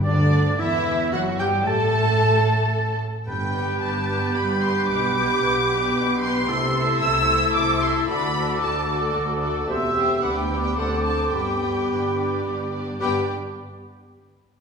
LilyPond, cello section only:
\new Staff \with { instrumentName = "Cello section" } { \clef bass \time 3/4 \key g \major \tempo 4 = 112 d,4 e,4 fis,8 g,8 | a,2~ a,8 r8 | g,4 g,4 g,4 | b,4 b,4 b,4 |
c4 c4 c4 | d,4 d,4 d,4 | e,4 d,4 d,4 | g,4 g,4 g,4 |
g,8 r2 r8 | }